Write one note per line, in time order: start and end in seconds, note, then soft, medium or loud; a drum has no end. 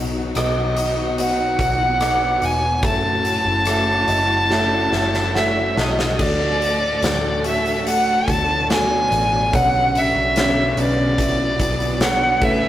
0.00 0.32 B1 medium
0.00 0.73 B2 medium
0.00 1.17 B2 medium
0.00 2.80 B2 medium
0.00 2.79 D#3 medium
0.00 6.15 F#3 medium
0.00 0.14 B3 medium
0.00 0.31 B3 medium
0.00 0.35 D#4 medium
0.00 2.80 D#4 medium
0.00 0.32 F#4 medium
0.00 2.80 F#4 medium
0.00 0.32 D#5 medium
0.15 0.55 B3 medium
0.35 1.55 B1 medium
0.35 1.14 B3 medium
0.35 1.58 D#4 medium
0.35 1.14 F#4 medium
0.35 1.14 D#5 medium
0.35 1.16 D#5 medium
0.35 cross-stick loud
0.35 closed hi-hat medium
0.57 0.97 B3 medium
0.77 2.41 F#4 medium
0.77 closed hi-hat medium
0.98 1.37 B3 medium
1.18 2.83 B2 medium
1.18 1.96 B3 medium
1.18 1.96 F#4 medium
1.18 1.97 D#5 medium
1.18 2.47 F#5 loud
1.18 closed hi-hat medium
1.39 1.79 B3 medium
1.59 2.37 B1 medium
1.59 1.99 D#4 medium
1.59 kick medium
1.59 closed hi-hat medium
1.80 2.20 B3 medium
2.00 2.78 B3 medium
2.00 2.91 D#4 medium
2.00 2.79 F#4 medium
2.00 2.79 D#5 medium
2.00 cross-stick loud
2.00 closed hi-hat medium
2.21 2.61 B3 medium
2.42 2.83 E1 medium
2.42 4.07 F#4 medium
2.42 2.85 G#5 loud
2.42 closed hi-hat medium
2.62 2.91 B3 medium
2.83 3.41 F#1 loud
2.83 4.49 F#2 medium
2.83 6.16 C#3 medium
2.83 3.62 A3 medium
2.83 6.16 A3 medium
2.83 6.16 E4 medium
2.83 3.62 F#4 medium
2.83 6.16 F#4 medium
2.83 3.62 E5 medium
2.83 5.32 A5 loud
2.83 kick loud
2.83 closed hi-hat medium
3.04 3.45 A3 medium
3.25 3.65 C#4 medium
3.25 closed hi-hat medium
3.45 4.03 F#1 medium
3.45 3.87 A3 medium
3.65 4.45 A3 medium
3.65 4.91 C#4 medium
3.65 4.46 F#4 medium
3.65 4.46 E5 medium
3.65 cross-stick loud
3.65 closed hi-hat medium
3.87 4.28 A3 medium
4.08 4.88 F#1 medium
4.08 5.76 F#4 medium
4.08 4.47 D#5 medium
4.08 closed hi-hat medium
4.29 4.70 A3 medium
4.49 6.28 F#2 medium
4.49 5.30 A3 medium
4.49 5.30 F#4 medium
4.49 4.89 C#5 medium
4.49 4.90 E5 medium
4.49 snare medium
4.70 5.13 A3 medium
4.92 5.73 F#1 medium
4.92 5.33 C#4 medium
4.92 5.31 E5 medium
4.92 snare medium
5.13 5.55 A3 medium
5.13 snare medium
5.34 6.15 A3 medium
5.34 6.27 C#4 medium
5.34 6.15 F#4 medium
5.34 5.80 E5 medium
5.34 6.15 F#5 medium
5.34 snare medium
5.55 5.97 A3 medium
5.76 6.16 B1 medium
5.76 7.44 F#4 medium
5.76 6.23 D#5 medium
5.76 6.16 A5 medium
5.76 snare medium
5.97 6.60 A3 medium
5.97 snare medium
6.19 6.99 D2 medium
6.19 8.24 A2 medium
6.19 9.69 D3 medium
6.19 7.41 D3 medium
6.19 9.51 D3 medium
6.19 12.39 F#3 medium
6.19 6.99 A3 medium
6.19 8.24 A3 medium
6.19 9.51 A3 medium
6.19 6.99 F#4 medium
6.19 12.39 F#4 medium
6.19 9.51 A4 medium
6.19 6.99 D5 medium
6.19 7.46 D5 loud
6.19 kick medium
6.19 crash medium
6.60 7.85 A3 medium
6.60 closed hi-hat medium
7.02 8.24 D2 medium
7.02 7.42 A3 medium
7.02 8.28 D4 medium
7.02 7.42 F#4 medium
7.02 7.43 D5 medium
7.02 snare loud
7.02 closed hi-hat loud
7.44 7.84 A3 medium
7.44 8.69 F#4 medium
7.44 7.85 F#4 medium
7.44 7.85 A4 medium
7.44 7.85 E5 medium
7.44 closed hi-hat medium
7.66 closed hi-hat soft
7.86 8.65 A3 medium
7.86 9.62 A3 medium
7.86 8.66 F#4 medium
7.86 8.66 D5 medium
7.86 8.32 F#5 loud
7.86 closed hi-hat medium
8.28 9.08 D2 medium
8.28 9.51 B2 medium
8.28 9.51 B3 medium
8.28 9.11 D4 medium
8.28 8.71 A5 loud
8.28 kick medium
8.28 closed hi-hat medium
8.69 9.49 A3 medium
8.69 10.37 F#4 medium
8.69 9.49 F#4 medium
8.69 9.50 D5 medium
8.69 9.57 G#5 loud
8.69 snare loud
8.69 closed hi-hat medium
9.11 9.50 A1 medium
9.11 9.95 D4 medium
9.11 closed hi-hat medium
9.52 10.12 B1 loud
9.52 12.39 B2 medium
9.52 10.74 B2 medium
9.52 12.50 B2 medium
9.52 11.56 C#3 medium
9.52 10.32 D3 medium
9.52 10.32 B3 medium
9.52 12.69 B3 medium
9.52 11.56 C#4 medium
9.52 10.33 C#5 medium
9.52 9.99 F#5 loud
9.52 kick loud
9.52 closed hi-hat medium
9.95 11.19 D4 medium
9.95 10.81 E5 loud
9.95 closed hi-hat medium
10.15 10.74 B1 medium
10.36 10.76 D3 medium
10.36 10.75 B3 medium
10.36 11.59 F#4 medium
10.36 10.76 C#5 medium
10.36 snare loud
10.36 closed hi-hat loud
10.77 11.56 B1 medium
10.77 11.17 D3 medium
10.77 11.17 B3 medium
10.77 11.17 B4 medium
10.77 12.02 D5 loud
10.77 closed hi-hat medium
11.18 11.97 D3 medium
11.18 11.97 B3 medium
11.18 11.97 E4 medium
11.18 kick medium
11.18 closed hi-hat medium
11.59 12.42 B1 medium
11.59 12.40 B2 medium
11.59 12.40 B3 medium
11.59 12.51 F#4 medium
11.59 kick medium
11.59 closed hi-hat medium
11.80 closed hi-hat soft
12.00 12.42 B3 medium
12.00 12.42 D4 medium
12.00 12.41 B4 medium
12.00 12.69 C#5 medium
12.00 12.45 F#5 loud
12.00 snare loud
12.00 closed hi-hat medium
12.41 12.69 C#2 loud
12.41 12.69 A2 medium
12.41 12.69 C#3 medium
12.41 12.69 E3 medium
12.41 12.69 A3 medium
12.41 12.69 C#4 medium
12.41 12.69 E4 medium
12.41 12.69 B4 medium
12.41 12.69 E5 loud
12.41 kick loud
12.41 crash medium